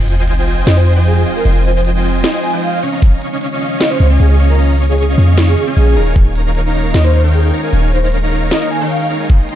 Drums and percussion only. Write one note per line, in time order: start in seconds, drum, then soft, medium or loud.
0.08 closed hi-hat medium
0.28 closed hi-hat medium
0.47 closed hi-hat medium
0.52 closed hi-hat medium
0.67 snare loud
0.67 closed hi-hat medium
0.87 closed hi-hat medium
1.06 closed hi-hat medium
1.26 closed hi-hat medium
1.31 closed hi-hat medium
1.36 closed hi-hat medium
1.40 closed hi-hat medium
1.45 closed hi-hat medium
1.65 closed hi-hat medium
1.85 closed hi-hat medium
2.04 closed hi-hat medium
2.09 closed hi-hat medium
2.24 snare loud
2.24 closed hi-hat medium
2.43 closed hi-hat medium
2.63 closed hi-hat medium
2.83 closed hi-hat medium
2.88 closed hi-hat medium
2.92 closed hi-hat medium
2.97 closed hi-hat medium
3.02 kick loud
3.02 closed hi-hat medium
3.22 closed hi-hat medium
3.41 closed hi-hat medium
3.61 closed hi-hat soft
3.66 closed hi-hat medium
3.81 snare loud
3.81 closed hi-hat medium
4.00 closed hi-hat medium
4.20 closed hi-hat medium
4.39 closed hi-hat soft
4.44 closed hi-hat medium
4.49 closed hi-hat soft
4.54 closed hi-hat medium
4.59 closed hi-hat medium
4.79 closed hi-hat medium
4.98 closed hi-hat medium
5.18 closed hi-hat soft
5.23 closed hi-hat medium
5.37 snare loud
5.37 closed hi-hat medium
5.57 closed hi-hat medium
5.77 closed hi-hat medium
5.96 closed hi-hat soft
6.01 closed hi-hat medium
6.06 closed hi-hat soft
6.11 closed hi-hat medium
6.16 kick loud
6.16 closed hi-hat medium
6.36 closed hi-hat medium
6.55 closed hi-hat medium
6.75 closed hi-hat soft
6.80 closed hi-hat medium
6.94 snare loud
6.94 closed hi-hat medium
7.14 closed hi-hat medium
7.34 closed hi-hat medium
7.53 closed hi-hat soft
7.58 closed hi-hat medium
7.63 closed hi-hat soft
7.68 closed hi-hat medium
7.73 closed hi-hat medium
7.92 closed hi-hat medium
8.12 closed hi-hat medium
8.32 closed hi-hat medium
8.37 closed hi-hat medium
8.51 snare loud
8.51 closed hi-hat medium
8.71 closed hi-hat medium
8.90 closed hi-hat medium
9.10 closed hi-hat soft
9.15 closed hi-hat medium
9.20 closed hi-hat soft
9.25 closed hi-hat medium
9.29 kick loud
9.29 closed hi-hat medium
9.49 closed hi-hat medium